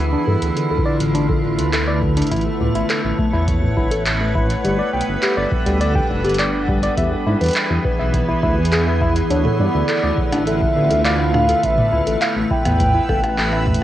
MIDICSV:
0, 0, Header, 1, 7, 480
1, 0, Start_track
1, 0, Key_signature, -1, "minor"
1, 0, Tempo, 582524
1, 1907, Time_signature, 4, 2, 24, 8
1, 11400, End_track
2, 0, Start_track
2, 0, Title_t, "Soft synth lead"
2, 0, Program_c, 0, 80
2, 7665, Note_on_c, 0, 73, 91
2, 7889, Note_off_c, 0, 73, 0
2, 7906, Note_on_c, 0, 74, 98
2, 8594, Note_off_c, 0, 74, 0
2, 8626, Note_on_c, 0, 76, 98
2, 9074, Note_off_c, 0, 76, 0
2, 9105, Note_on_c, 0, 77, 101
2, 9586, Note_on_c, 0, 76, 106
2, 9598, Note_off_c, 0, 77, 0
2, 10061, Note_off_c, 0, 76, 0
2, 10066, Note_on_c, 0, 77, 100
2, 10174, Note_off_c, 0, 77, 0
2, 10307, Note_on_c, 0, 79, 108
2, 11234, Note_off_c, 0, 79, 0
2, 11400, End_track
3, 0, Start_track
3, 0, Title_t, "Synth texture"
3, 0, Program_c, 1, 99
3, 0, Note_on_c, 1, 59, 82
3, 0, Note_on_c, 1, 71, 81
3, 11400, Note_off_c, 1, 59, 0
3, 11400, Note_off_c, 1, 71, 0
3, 11400, End_track
4, 0, Start_track
4, 0, Title_t, "Ambient pad"
4, 0, Program_c, 2, 92
4, 0, Note_on_c, 2, 50, 87
4, 0, Note_on_c, 2, 59, 76
4, 0, Note_on_c, 2, 64, 87
4, 212, Note_on_c, 2, 65, 79
4, 408, Note_on_c, 2, 57, 93
4, 594, Note_off_c, 2, 59, 0
4, 1905, Note_off_c, 2, 65, 0
4, 1907, Note_off_c, 2, 50, 0
4, 2161, Note_on_c, 2, 73, 90
4, 2652, Note_on_c, 2, 71, 83
4, 3827, Note_off_c, 2, 57, 0
4, 3827, Note_on_c, 2, 55, 81
4, 4031, Note_on_c, 2, 69, 76
4, 4128, Note_on_c, 2, 62, 98
4, 4594, Note_off_c, 2, 64, 0
4, 4595, Note_off_c, 2, 73, 0
4, 5746, Note_off_c, 2, 69, 0
4, 5747, Note_off_c, 2, 55, 0
4, 5748, Note_on_c, 2, 52, 91
4, 5847, Note_on_c, 2, 59, 80
4, 5880, Note_on_c, 2, 68, 87
4, 6126, Note_on_c, 2, 64, 74
4, 6514, Note_off_c, 2, 62, 0
4, 6515, Note_off_c, 2, 71, 0
4, 7666, Note_off_c, 2, 68, 0
4, 7667, Note_off_c, 2, 52, 0
4, 7669, Note_on_c, 2, 50, 83
4, 7758, Note_on_c, 2, 57, 78
4, 8435, Note_off_c, 2, 59, 0
4, 8436, Note_on_c, 2, 65, 94
4, 9587, Note_off_c, 2, 65, 0
4, 9588, Note_off_c, 2, 50, 0
4, 9718, Note_on_c, 2, 71, 74
4, 10154, Note_on_c, 2, 76, 92
4, 11400, Note_off_c, 2, 57, 0
4, 11400, Note_off_c, 2, 64, 0
4, 11400, Note_off_c, 2, 71, 0
4, 11400, Note_off_c, 2, 76, 0
4, 11400, End_track
5, 0, Start_track
5, 0, Title_t, "Tine electric piano"
5, 0, Program_c, 3, 4
5, 105, Note_on_c, 3, 62, 71
5, 194, Note_off_c, 3, 62, 0
5, 227, Note_on_c, 3, 69, 73
5, 315, Note_off_c, 3, 69, 0
5, 467, Note_on_c, 3, 50, 76
5, 555, Note_off_c, 3, 50, 0
5, 586, Note_on_c, 3, 69, 77
5, 675, Note_off_c, 3, 69, 0
5, 706, Note_on_c, 3, 74, 70
5, 794, Note_off_c, 3, 74, 0
5, 945, Note_on_c, 3, 62, 82
5, 1034, Note_off_c, 3, 62, 0
5, 1066, Note_on_c, 3, 69, 72
5, 1154, Note_off_c, 3, 69, 0
5, 1305, Note_on_c, 3, 50, 71
5, 1394, Note_off_c, 3, 50, 0
5, 1426, Note_on_c, 3, 69, 76
5, 1515, Note_off_c, 3, 69, 0
5, 1546, Note_on_c, 3, 74, 74
5, 1635, Note_off_c, 3, 74, 0
5, 1787, Note_on_c, 3, 62, 73
5, 1875, Note_off_c, 3, 62, 0
5, 1906, Note_on_c, 3, 64, 77
5, 1994, Note_off_c, 3, 64, 0
5, 2146, Note_on_c, 3, 45, 73
5, 2235, Note_off_c, 3, 45, 0
5, 2266, Note_on_c, 3, 64, 74
5, 2355, Note_off_c, 3, 64, 0
5, 2386, Note_on_c, 3, 69, 79
5, 2475, Note_off_c, 3, 69, 0
5, 2627, Note_on_c, 3, 57, 72
5, 2715, Note_off_c, 3, 57, 0
5, 2746, Note_on_c, 3, 64, 71
5, 2835, Note_off_c, 3, 64, 0
5, 2985, Note_on_c, 3, 45, 72
5, 3074, Note_off_c, 3, 45, 0
5, 3106, Note_on_c, 3, 64, 72
5, 3195, Note_off_c, 3, 64, 0
5, 3226, Note_on_c, 3, 69, 74
5, 3314, Note_off_c, 3, 69, 0
5, 3466, Note_on_c, 3, 57, 75
5, 3555, Note_off_c, 3, 57, 0
5, 3585, Note_on_c, 3, 64, 75
5, 3674, Note_off_c, 3, 64, 0
5, 3826, Note_on_c, 3, 55, 81
5, 3915, Note_off_c, 3, 55, 0
5, 3946, Note_on_c, 3, 74, 74
5, 4035, Note_off_c, 3, 74, 0
5, 4066, Note_on_c, 3, 79, 71
5, 4155, Note_off_c, 3, 79, 0
5, 4306, Note_on_c, 3, 67, 79
5, 4395, Note_off_c, 3, 67, 0
5, 4426, Note_on_c, 3, 74, 74
5, 4515, Note_off_c, 3, 74, 0
5, 4666, Note_on_c, 3, 55, 74
5, 4755, Note_off_c, 3, 55, 0
5, 4786, Note_on_c, 3, 74, 81
5, 4875, Note_off_c, 3, 74, 0
5, 4906, Note_on_c, 3, 79, 73
5, 4995, Note_off_c, 3, 79, 0
5, 5146, Note_on_c, 3, 67, 73
5, 5235, Note_off_c, 3, 67, 0
5, 5266, Note_on_c, 3, 74, 81
5, 5355, Note_off_c, 3, 74, 0
5, 5506, Note_on_c, 3, 55, 73
5, 5595, Note_off_c, 3, 55, 0
5, 5627, Note_on_c, 3, 74, 74
5, 5715, Note_off_c, 3, 74, 0
5, 5747, Note_on_c, 3, 76, 81
5, 5835, Note_off_c, 3, 76, 0
5, 5986, Note_on_c, 3, 64, 73
5, 6075, Note_off_c, 3, 64, 0
5, 6106, Note_on_c, 3, 71, 72
5, 6195, Note_off_c, 3, 71, 0
5, 6345, Note_on_c, 3, 52, 74
5, 6434, Note_off_c, 3, 52, 0
5, 6466, Note_on_c, 3, 71, 71
5, 6555, Note_off_c, 3, 71, 0
5, 6586, Note_on_c, 3, 76, 70
5, 6675, Note_off_c, 3, 76, 0
5, 6827, Note_on_c, 3, 64, 74
5, 6915, Note_off_c, 3, 64, 0
5, 6947, Note_on_c, 3, 64, 73
5, 7035, Note_off_c, 3, 64, 0
5, 7186, Note_on_c, 3, 68, 75
5, 7301, Note_off_c, 3, 68, 0
5, 7307, Note_on_c, 3, 76, 72
5, 7360, Note_off_c, 3, 76, 0
5, 7427, Note_on_c, 3, 64, 98
5, 7515, Note_off_c, 3, 64, 0
5, 7667, Note_on_c, 3, 62, 78
5, 7755, Note_off_c, 3, 62, 0
5, 7787, Note_on_c, 3, 69, 76
5, 7875, Note_off_c, 3, 69, 0
5, 8026, Note_on_c, 3, 50, 75
5, 8115, Note_off_c, 3, 50, 0
5, 8147, Note_on_c, 3, 69, 80
5, 8235, Note_off_c, 3, 69, 0
5, 8267, Note_on_c, 3, 74, 74
5, 8355, Note_off_c, 3, 74, 0
5, 8506, Note_on_c, 3, 62, 73
5, 8595, Note_off_c, 3, 62, 0
5, 8627, Note_on_c, 3, 69, 80
5, 8715, Note_off_c, 3, 69, 0
5, 8866, Note_on_c, 3, 50, 74
5, 8955, Note_off_c, 3, 50, 0
5, 8986, Note_on_c, 3, 69, 75
5, 9075, Note_off_c, 3, 69, 0
5, 9106, Note_on_c, 3, 74, 78
5, 9195, Note_off_c, 3, 74, 0
5, 9346, Note_on_c, 3, 62, 74
5, 9434, Note_off_c, 3, 62, 0
5, 9467, Note_on_c, 3, 69, 74
5, 9555, Note_off_c, 3, 69, 0
5, 9706, Note_on_c, 3, 45, 75
5, 9795, Note_off_c, 3, 45, 0
5, 9827, Note_on_c, 3, 64, 75
5, 9915, Note_off_c, 3, 64, 0
5, 9947, Note_on_c, 3, 69, 74
5, 10035, Note_off_c, 3, 69, 0
5, 10186, Note_on_c, 3, 57, 77
5, 10275, Note_off_c, 3, 57, 0
5, 10307, Note_on_c, 3, 64, 73
5, 10395, Note_off_c, 3, 64, 0
5, 10546, Note_on_c, 3, 45, 82
5, 10635, Note_off_c, 3, 45, 0
5, 10667, Note_on_c, 3, 64, 75
5, 10755, Note_off_c, 3, 64, 0
5, 10787, Note_on_c, 3, 69, 75
5, 10875, Note_off_c, 3, 69, 0
5, 11026, Note_on_c, 3, 57, 80
5, 11115, Note_off_c, 3, 57, 0
5, 11146, Note_on_c, 3, 64, 75
5, 11235, Note_off_c, 3, 64, 0
5, 11400, End_track
6, 0, Start_track
6, 0, Title_t, "Detuned saw bass"
6, 0, Program_c, 4, 39
6, 0, Note_on_c, 4, 38, 100
6, 132, Note_off_c, 4, 38, 0
6, 226, Note_on_c, 4, 43, 101
6, 299, Note_off_c, 4, 43, 0
6, 346, Note_on_c, 4, 38, 96
6, 419, Note_off_c, 4, 38, 0
6, 585, Note_on_c, 4, 38, 99
6, 659, Note_off_c, 4, 38, 0
6, 825, Note_on_c, 4, 33, 89
6, 1111, Note_off_c, 4, 33, 0
6, 1186, Note_on_c, 4, 33, 95
6, 1307, Note_on_c, 4, 38, 89
6, 1319, Note_off_c, 4, 33, 0
6, 1832, Note_off_c, 4, 38, 0
6, 1906, Note_on_c, 4, 33, 100
6, 2052, Note_off_c, 4, 33, 0
6, 2147, Note_on_c, 4, 37, 103
6, 2220, Note_off_c, 4, 37, 0
6, 2267, Note_on_c, 4, 33, 98
6, 2340, Note_off_c, 4, 33, 0
6, 2506, Note_on_c, 4, 33, 100
6, 2579, Note_off_c, 4, 33, 0
6, 2746, Note_on_c, 4, 40, 86
6, 3031, Note_off_c, 4, 40, 0
6, 3107, Note_on_c, 4, 31, 93
6, 3226, Note_on_c, 4, 33, 91
6, 3239, Note_off_c, 4, 31, 0
6, 3751, Note_off_c, 4, 33, 0
6, 3826, Note_on_c, 4, 31, 101
6, 3972, Note_off_c, 4, 31, 0
6, 4067, Note_on_c, 4, 35, 104
6, 4140, Note_off_c, 4, 35, 0
6, 4187, Note_on_c, 4, 31, 94
6, 4260, Note_off_c, 4, 31, 0
6, 4427, Note_on_c, 4, 31, 103
6, 4500, Note_off_c, 4, 31, 0
6, 4667, Note_on_c, 4, 38, 84
6, 4951, Note_off_c, 4, 38, 0
6, 5027, Note_on_c, 4, 29, 95
6, 5147, Note_on_c, 4, 31, 86
6, 5159, Note_off_c, 4, 29, 0
6, 5672, Note_off_c, 4, 31, 0
6, 5747, Note_on_c, 4, 40, 98
6, 5893, Note_off_c, 4, 40, 0
6, 5986, Note_on_c, 4, 44, 100
6, 6059, Note_off_c, 4, 44, 0
6, 6107, Note_on_c, 4, 40, 98
6, 6180, Note_off_c, 4, 40, 0
6, 6347, Note_on_c, 4, 40, 100
6, 6420, Note_off_c, 4, 40, 0
6, 6587, Note_on_c, 4, 35, 85
6, 6871, Note_off_c, 4, 35, 0
6, 6946, Note_on_c, 4, 38, 94
6, 7066, Note_on_c, 4, 40, 89
6, 7079, Note_off_c, 4, 38, 0
6, 7591, Note_off_c, 4, 40, 0
6, 7667, Note_on_c, 4, 38, 100
6, 7813, Note_off_c, 4, 38, 0
6, 7906, Note_on_c, 4, 43, 103
6, 7979, Note_off_c, 4, 43, 0
6, 8027, Note_on_c, 4, 38, 96
6, 8100, Note_off_c, 4, 38, 0
6, 8266, Note_on_c, 4, 38, 102
6, 8339, Note_off_c, 4, 38, 0
6, 8507, Note_on_c, 4, 33, 85
6, 8792, Note_off_c, 4, 33, 0
6, 8867, Note_on_c, 4, 33, 94
6, 8988, Note_on_c, 4, 38, 90
6, 9000, Note_off_c, 4, 33, 0
6, 9512, Note_off_c, 4, 38, 0
6, 9587, Note_on_c, 4, 33, 102
6, 9733, Note_off_c, 4, 33, 0
6, 9827, Note_on_c, 4, 37, 104
6, 9900, Note_off_c, 4, 37, 0
6, 9947, Note_on_c, 4, 33, 97
6, 10020, Note_off_c, 4, 33, 0
6, 10186, Note_on_c, 4, 33, 104
6, 10259, Note_off_c, 4, 33, 0
6, 10426, Note_on_c, 4, 40, 85
6, 10711, Note_off_c, 4, 40, 0
6, 10787, Note_on_c, 4, 31, 91
6, 10907, Note_on_c, 4, 33, 91
6, 10920, Note_off_c, 4, 31, 0
6, 11400, Note_off_c, 4, 33, 0
6, 11400, End_track
7, 0, Start_track
7, 0, Title_t, "Drums"
7, 347, Note_on_c, 9, 42, 64
7, 429, Note_off_c, 9, 42, 0
7, 467, Note_on_c, 9, 42, 52
7, 550, Note_off_c, 9, 42, 0
7, 646, Note_on_c, 9, 36, 113
7, 728, Note_off_c, 9, 36, 0
7, 827, Note_on_c, 9, 42, 66
7, 909, Note_off_c, 9, 42, 0
7, 947, Note_on_c, 9, 42, 53
7, 1029, Note_off_c, 9, 42, 0
7, 1066, Note_on_c, 9, 36, 116
7, 1148, Note_off_c, 9, 36, 0
7, 1306, Note_on_c, 9, 42, 66
7, 1389, Note_off_c, 9, 42, 0
7, 1426, Note_on_c, 9, 39, 110
7, 1426, Note_on_c, 9, 42, 51
7, 1509, Note_off_c, 9, 39, 0
7, 1509, Note_off_c, 9, 42, 0
7, 1666, Note_on_c, 9, 36, 113
7, 1748, Note_off_c, 9, 36, 0
7, 1786, Note_on_c, 9, 42, 65
7, 1827, Note_off_c, 9, 42, 0
7, 1827, Note_on_c, 9, 42, 51
7, 1867, Note_off_c, 9, 42, 0
7, 1867, Note_on_c, 9, 42, 43
7, 1906, Note_off_c, 9, 42, 0
7, 1906, Note_on_c, 9, 36, 80
7, 1906, Note_on_c, 9, 42, 55
7, 1947, Note_off_c, 9, 42, 0
7, 1947, Note_on_c, 9, 42, 30
7, 1986, Note_off_c, 9, 42, 0
7, 1986, Note_on_c, 9, 42, 24
7, 1988, Note_off_c, 9, 36, 0
7, 2068, Note_off_c, 9, 42, 0
7, 2267, Note_on_c, 9, 42, 63
7, 2349, Note_off_c, 9, 42, 0
7, 2386, Note_on_c, 9, 39, 116
7, 2386, Note_on_c, 9, 42, 53
7, 2469, Note_off_c, 9, 39, 0
7, 2469, Note_off_c, 9, 42, 0
7, 2626, Note_on_c, 9, 36, 119
7, 2708, Note_off_c, 9, 36, 0
7, 2866, Note_on_c, 9, 36, 114
7, 2867, Note_on_c, 9, 42, 54
7, 2949, Note_off_c, 9, 36, 0
7, 2949, Note_off_c, 9, 42, 0
7, 3106, Note_on_c, 9, 36, 121
7, 3188, Note_off_c, 9, 36, 0
7, 3225, Note_on_c, 9, 42, 66
7, 3307, Note_off_c, 9, 42, 0
7, 3347, Note_on_c, 9, 39, 114
7, 3347, Note_on_c, 9, 42, 52
7, 3429, Note_off_c, 9, 39, 0
7, 3429, Note_off_c, 9, 42, 0
7, 3586, Note_on_c, 9, 36, 122
7, 3668, Note_off_c, 9, 36, 0
7, 3707, Note_on_c, 9, 42, 68
7, 3789, Note_off_c, 9, 42, 0
7, 3828, Note_on_c, 9, 42, 52
7, 3910, Note_off_c, 9, 42, 0
7, 4127, Note_on_c, 9, 42, 66
7, 4209, Note_off_c, 9, 42, 0
7, 4306, Note_on_c, 9, 39, 122
7, 4306, Note_on_c, 9, 42, 52
7, 4389, Note_off_c, 9, 39, 0
7, 4389, Note_off_c, 9, 42, 0
7, 4546, Note_on_c, 9, 36, 121
7, 4629, Note_off_c, 9, 36, 0
7, 4667, Note_on_c, 9, 42, 64
7, 4749, Note_off_c, 9, 42, 0
7, 4787, Note_on_c, 9, 42, 54
7, 4869, Note_off_c, 9, 42, 0
7, 4906, Note_on_c, 9, 36, 118
7, 4989, Note_off_c, 9, 36, 0
7, 5147, Note_on_c, 9, 42, 29
7, 5187, Note_off_c, 9, 42, 0
7, 5187, Note_on_c, 9, 42, 41
7, 5228, Note_off_c, 9, 42, 0
7, 5228, Note_on_c, 9, 42, 50
7, 5267, Note_off_c, 9, 42, 0
7, 5267, Note_on_c, 9, 39, 118
7, 5267, Note_on_c, 9, 42, 52
7, 5349, Note_off_c, 9, 39, 0
7, 5349, Note_off_c, 9, 42, 0
7, 5506, Note_on_c, 9, 36, 123
7, 5589, Note_off_c, 9, 36, 0
7, 5627, Note_on_c, 9, 42, 65
7, 5709, Note_off_c, 9, 42, 0
7, 5746, Note_on_c, 9, 36, 80
7, 5747, Note_on_c, 9, 42, 52
7, 5829, Note_off_c, 9, 36, 0
7, 5829, Note_off_c, 9, 42, 0
7, 6106, Note_on_c, 9, 42, 28
7, 6127, Note_off_c, 9, 42, 0
7, 6127, Note_on_c, 9, 42, 33
7, 6147, Note_off_c, 9, 42, 0
7, 6147, Note_on_c, 9, 42, 38
7, 6167, Note_off_c, 9, 42, 0
7, 6167, Note_on_c, 9, 42, 43
7, 6187, Note_off_c, 9, 42, 0
7, 6187, Note_on_c, 9, 42, 48
7, 6207, Note_off_c, 9, 42, 0
7, 6207, Note_on_c, 9, 42, 52
7, 6227, Note_off_c, 9, 42, 0
7, 6227, Note_on_c, 9, 39, 120
7, 6227, Note_on_c, 9, 42, 51
7, 6310, Note_off_c, 9, 39, 0
7, 6310, Note_off_c, 9, 42, 0
7, 6466, Note_on_c, 9, 36, 116
7, 6549, Note_off_c, 9, 36, 0
7, 6706, Note_on_c, 9, 36, 115
7, 6706, Note_on_c, 9, 42, 49
7, 6788, Note_off_c, 9, 42, 0
7, 6789, Note_off_c, 9, 36, 0
7, 6946, Note_on_c, 9, 36, 119
7, 7029, Note_off_c, 9, 36, 0
7, 7126, Note_on_c, 9, 42, 61
7, 7186, Note_off_c, 9, 42, 0
7, 7186, Note_on_c, 9, 39, 116
7, 7186, Note_on_c, 9, 42, 48
7, 7269, Note_off_c, 9, 39, 0
7, 7269, Note_off_c, 9, 42, 0
7, 7427, Note_on_c, 9, 36, 120
7, 7509, Note_off_c, 9, 36, 0
7, 7547, Note_on_c, 9, 42, 61
7, 7629, Note_off_c, 9, 42, 0
7, 7667, Note_on_c, 9, 42, 52
7, 7749, Note_off_c, 9, 42, 0
7, 7786, Note_on_c, 9, 45, 92
7, 7869, Note_off_c, 9, 45, 0
7, 8147, Note_on_c, 9, 39, 114
7, 8147, Note_on_c, 9, 42, 47
7, 8229, Note_off_c, 9, 39, 0
7, 8229, Note_off_c, 9, 42, 0
7, 8386, Note_on_c, 9, 36, 112
7, 8469, Note_off_c, 9, 36, 0
7, 8507, Note_on_c, 9, 37, 74
7, 8507, Note_on_c, 9, 42, 61
7, 8589, Note_off_c, 9, 37, 0
7, 8589, Note_off_c, 9, 42, 0
7, 8626, Note_on_c, 9, 42, 49
7, 8709, Note_off_c, 9, 42, 0
7, 8746, Note_on_c, 9, 36, 110
7, 8829, Note_off_c, 9, 36, 0
7, 8986, Note_on_c, 9, 42, 62
7, 9068, Note_off_c, 9, 42, 0
7, 9107, Note_on_c, 9, 39, 112
7, 9107, Note_on_c, 9, 42, 48
7, 9189, Note_off_c, 9, 39, 0
7, 9189, Note_off_c, 9, 42, 0
7, 9227, Note_on_c, 9, 37, 48
7, 9309, Note_off_c, 9, 37, 0
7, 9346, Note_on_c, 9, 37, 73
7, 9346, Note_on_c, 9, 45, 88
7, 9429, Note_off_c, 9, 37, 0
7, 9429, Note_off_c, 9, 45, 0
7, 9466, Note_on_c, 9, 42, 60
7, 9549, Note_off_c, 9, 42, 0
7, 9587, Note_on_c, 9, 36, 80
7, 9587, Note_on_c, 9, 42, 51
7, 9669, Note_off_c, 9, 36, 0
7, 9669, Note_off_c, 9, 42, 0
7, 9706, Note_on_c, 9, 45, 91
7, 9788, Note_off_c, 9, 45, 0
7, 9946, Note_on_c, 9, 42, 60
7, 10028, Note_off_c, 9, 42, 0
7, 10067, Note_on_c, 9, 39, 112
7, 10067, Note_on_c, 9, 42, 49
7, 10149, Note_off_c, 9, 39, 0
7, 10149, Note_off_c, 9, 42, 0
7, 10306, Note_on_c, 9, 36, 111
7, 10389, Note_off_c, 9, 36, 0
7, 10427, Note_on_c, 9, 37, 76
7, 10427, Note_on_c, 9, 42, 60
7, 10427, Note_on_c, 9, 45, 84
7, 10509, Note_off_c, 9, 37, 0
7, 10509, Note_off_c, 9, 42, 0
7, 10509, Note_off_c, 9, 45, 0
7, 10546, Note_on_c, 9, 36, 114
7, 10547, Note_on_c, 9, 42, 51
7, 10629, Note_off_c, 9, 36, 0
7, 10629, Note_off_c, 9, 42, 0
7, 10786, Note_on_c, 9, 36, 109
7, 10787, Note_on_c, 9, 37, 51
7, 10869, Note_off_c, 9, 36, 0
7, 10870, Note_off_c, 9, 37, 0
7, 10907, Note_on_c, 9, 37, 75
7, 10907, Note_on_c, 9, 42, 61
7, 10989, Note_off_c, 9, 37, 0
7, 10989, Note_off_c, 9, 42, 0
7, 11027, Note_on_c, 9, 39, 112
7, 11027, Note_on_c, 9, 42, 49
7, 11109, Note_off_c, 9, 39, 0
7, 11109, Note_off_c, 9, 42, 0
7, 11147, Note_on_c, 9, 37, 50
7, 11229, Note_off_c, 9, 37, 0
7, 11267, Note_on_c, 9, 36, 105
7, 11287, Note_off_c, 9, 36, 0
7, 11287, Note_on_c, 9, 36, 84
7, 11306, Note_off_c, 9, 36, 0
7, 11306, Note_on_c, 9, 36, 74
7, 11326, Note_on_c, 9, 42, 62
7, 11327, Note_off_c, 9, 36, 0
7, 11327, Note_on_c, 9, 36, 58
7, 11347, Note_off_c, 9, 36, 0
7, 11347, Note_on_c, 9, 36, 49
7, 11366, Note_off_c, 9, 36, 0
7, 11366, Note_on_c, 9, 36, 39
7, 11400, Note_off_c, 9, 36, 0
7, 11400, Note_off_c, 9, 42, 0
7, 11400, End_track
0, 0, End_of_file